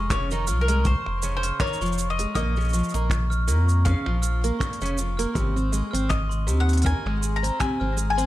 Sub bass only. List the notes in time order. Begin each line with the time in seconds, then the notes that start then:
Already playing: F1
0.49 C2
1.07 F1
1.81 F1
2.35 A#1
2.94 A#1
3.48 F2
4.07 A#1
4.81 F1
5.35 G#1
5.94 G#1
6.47 D#2
7.05 G#1
7.81 G#1